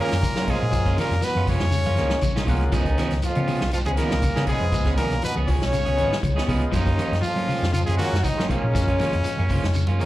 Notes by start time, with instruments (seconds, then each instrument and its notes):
Already playing: trombone section A#2, clean electric guitar D#3, trombone A#3
0.00 clean electric guitar F3 A#3 C#4 F4, transistor combo organ G#3 A#3 C#4 F4, trumpet A#4, shekere
0.12 fingered electric bass F#2, snare
0.22 clean electric guitar C#3, kick, closed hi-hat, high conga, low conga, claves, shekere
0.34 fingered electric bass F#3, transistor combo organ G#3 A#3 C#4 F#4, clean electric guitar C#4 F4, snare
0.38 clean electric guitar A#3
0.46 trombone section G#2, clean electric guitar B2 F3 A#3 C#4 F4, trombone G#3, transistor combo organ G#3 A#3 C#4 F4, trumpet G#4, kick, closed hi-hat, low conga, claves, shekere
0.62 fingered electric bass A#2
0.72 fingered electric bass F#2, clean electric guitar F3, kick, closed hi-hat, high conga, shekere
0.86 clean electric guitar A#3 C#4 F4, kick, closed hi-hat
0.97 trombone section A#2, clean electric guitar D#3 F3 A#3 C#4 F4, trumpet A#4, snare, closed hi-hat, high conga, low conga, claves, shekere
1.01 trombone A#3
1.11 fingered electric bass F2, snare, closed hi-hat
1.22 trombone section B2, clean electric guitar F3, trombone B3, trumpet B4, snare, closed hi-hat, shekere
1.35 fingered electric bass F#2, clean electric guitar C#4 F4, high conga, claves
1.47 clean electric guitar C#3 F3 A#3 C#4 F4, trombone section C#3, trumpet C#5, kick, open hi-hat, low conga, shekere
1.51 trombone C#4
1.60 fingered electric bass F2, snare
1.71 clean electric guitar C#3, snare, closed hi-hat, claves, shekere
1.84 fingered electric bass F#2, clean electric guitar A#3 C#4 F4, closed hi-hat, high conga
1.96 fingered electric bass C#2, clean electric guitar D#3 F3 A#3 C#4 F4, transistor combo organ G#3 A#3 C#4, snare, closed hi-hat, high conga, shekere
2.00 transistor combo organ D#4
2.10 muted fingered electric bass stroke, snare, high conga
2.21 fingered electric bass A#1, clean electric guitar C#3, transistor combo organ C#5, kick, closed hi-hat, high conga, claves, shekere
2.36 transistor combo organ G#3 A#3 C#4 D#4, clean electric guitar A#3 C#4 F4, snare, low conga
2.47 fingered electric bass C#2, clean electric guitar B2 F3 A#3 C#4 F4, transistor combo organ G#3 A#3 C#4 F4 F#5, kick, open hi-hat, low conga, claves, shekere
2.61 closed hi-hat, low conga
2.72 fingered electric bass C#2, trombone section D#2, clean electric guitar F3 B3 C#4 G#4, trumpet D#4, kick, closed hi-hat, high conga, shekere
2.77 trombone D#3
2.85 clean electric guitar B3 C#4 G#4, kick, closed hi-hat
2.98 clean electric guitar D#3 F3 B3 C#4 G#4, snare, closed hi-hat, high conga, low conga, claves, shekere
3.10 fingered electric bass C#2, snare, closed hi-hat
3.22 trombone section F2, trombone F3, clean electric guitar F3, trumpet F4, closed hi-hat, high conga, shekere
3.35 fingered electric bass C#3, clean electric guitar B3 C#4, muted clean electric guitar stroke, closed hi-hat, high conga, claves
3.47 clean electric guitar C#3 F3 B3 C#4 G#4, open hi-hat, low conga, shekere
3.61 fingered electric bass B1, snare
3.71 trombone section F2, trombone F3, trumpet F4, muted clean electric guitar stroke, closed hi-hat, high conga, claves, shekere
3.84 fingered electric bass C#2, trombone section G#2, trombone G#3, clean electric guitar B3 C#4 G#4, trumpet G#4, closed hi-hat, high conga
3.97 trombone section A#2, clean electric guitar D#3 F3 B3 C#4 G#4, transistor combo organ G#3 B3 D#4 F4, trumpet A#4, snare, closed hi-hat, shekere
4.01 trombone A#3
4.11 fingered electric bass C#2, snare
4.22 clean electric guitar C#3, kick, closed hi-hat, high conga, low conga, claves, shekere
4.34 fingered electric bass C#3, transistor combo organ G#3 B3 D#4 G#4, clean electric guitar B3 C#4 G#4, snare
4.46 trombone section G#2, clean electric guitar B2 F3 B3 C#4 G#4, transistor combo organ G#3 B3 D#4 F4, trumpet G#4, kick, closed hi-hat, low conga, shekere
4.50 trombone G#3, claves
4.61 fingered electric bass F2
4.72 fingered electric bass C#2, clean electric guitar G#3, kick, closed hi-hat, high conga, shekere
4.84 clean electric guitar B3 C#4 G#4, kick, snare, closed hi-hat
4.96 trombone section A#2, clean electric guitar D#3 F3 B3 C#4 G#4, trumpet A#4, closed hi-hat, high conga, low conga, shekere
5.00 trombone A#3, claves
5.10 fingered electric bass B1, snare, closed hi-hat
5.22 trombone section B2, clean electric guitar F3, trumpet B4, snare, closed hi-hat, high conga, shekere
5.27 trombone B3
5.35 fingered electric bass C#2, clean electric guitar B3 C#4 G#4, high conga, claves
5.47 trombone section C#3, clean electric guitar F3 C#4 G#4, trombone C#4, trumpet C#5, kick, open hi-hat, low conga, shekere
5.62 fingered electric bass B1, snare
5.73 clean electric guitar C#3, snare, closed hi-hat, high conga, claves, shekere
5.85 fingered electric bass C#2, clean electric guitar B3 C#4 G#4, closed hi-hat, high conga
5.96 fingered electric bass G#1, clean electric guitar D#3 F3 B3 C#4 G#4, transistor combo organ G#3 B3 D#4 F4, closed hi-hat, shekere
6.12 muted fingered electric bass stroke, snare
6.23 fingered electric bass C#2, clean electric guitar C#3, kick, closed hi-hat, high conga, claves, shekere
6.35 transistor combo organ G#3 B3 D#4 G#4, clean electric guitar B3 C#4 G#4, snare
6.47 fingered electric bass C#2, clean electric guitar B2 F3 B3 C#4 G#4, transistor combo organ G#3 B3 D#4 F4, kick, open hi-hat, high conga, low conga, claves, shekere
6.62 closed hi-hat
6.72 trombone section D#2, fingered electric bass F#2, clean electric guitar F3 A#3 C#4 F4, trumpet D#4, kick, closed hi-hat, shekere
6.76 trombone D#3
6.85 clean electric guitar A#3 C#4 F4, kick, closed hi-hat
6.97 clean electric guitar D#3 F3 A#3 C#4 F4, closed hi-hat, high conga, shekere
7.02 claves
7.12 fingered electric bass F#2, snare, closed hi-hat
7.21 trombone section F2, clean electric guitar F3, trumpet F4, closed hi-hat, high conga, shekere
7.25 trombone F3
7.36 fingered electric bass F#3, clean electric guitar A#3 C#4, closed hi-hat, high conga, claves
7.48 clean electric guitar C#3 F3 A#3 C#4 F4, open hi-hat, low conga, shekere
7.62 fingered electric bass F2, snare
7.73 trombone section F2, clean electric guitar C#3, trumpet F4, closed hi-hat, claves, shekere
7.77 trombone F3
7.86 fingered electric bass F#2, trombone section G#2, clean electric guitar A#3 C#4 F4, trumpet G#4, closed hi-hat, high conga
7.92 trombone G#3
7.97 trombone section F#2, clean electric guitar D#3 F3 A#3 C#4 F4, transistor combo organ G#3 A#3 C#4 F4, trumpet F#4, closed hi-hat, shekere
8.02 trombone F#3, snare
8.13 fingered electric bass F#2, snare
8.24 trombone section D#2, clean electric guitar C#3, trumpet D#4, kick, closed hi-hat, high conga, low conga, claves, shekere
8.29 trombone D#3
8.36 fingered electric bass F#3, transistor combo organ G#3 A#3 C#4 D#4, clean electric guitar A#3 C#4 F4, snare
8.49 trombone section C#2, clean electric guitar B2 F3 A#3 C#4 F4, trombone C#3, transistor combo organ G#3 A#3 C#4 F4, trumpet C#4, kick, closed hi-hat, high conga, low conga, claves, shekere
8.64 fingered electric bass A#2
8.75 fingered electric bass F#2, clean electric guitar F3, kick, closed hi-hat, shekere
8.88 clean electric guitar A#3 C#4 F4, kick, closed hi-hat
8.99 clean electric guitar D#3 F3 A#3 C#4 F4, snare, closed hi-hat, high conga, low conga, claves, shekere
9.13 fingered electric bass F2, closed hi-hat
9.24 clean electric guitar F3, closed hi-hat, high conga, shekere
9.37 fingered electric bass F#2, clean electric guitar A#3 C#4, high conga, claves
9.49 clean electric guitar C#3 F3 A#3 C#4 F4, kick, open hi-hat, low conga, shekere
9.63 fingered electric bass F2, snare
9.74 clean electric guitar C#3, closed hi-hat, high conga, claves, shekere
9.87 fingered electric bass F#2, clean electric guitar A#3 C#4 F4, closed hi-hat, high conga
9.99 fingered electric bass C#2, clean electric guitar F3 A#3 C#4, transistor combo organ G#3 A#3 C#4 D#4, closed hi-hat, shekere